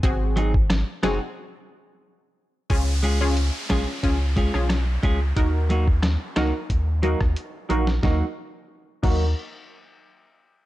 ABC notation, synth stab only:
X:1
M:4/4
L:1/16
Q:1/4=90
K:Ebm
V:1 name="Synth stab"
[=CGA]4 z2 [CGA] z8 z | [DFA] z2 [DFA] z2 [DFA] z [DFA] z2 [DFA] z4 | [EGB]4 z2 [EGB] z3 [EGB] z3 [EGB] z | [EGB] z4 z [EGB]2 z8 |]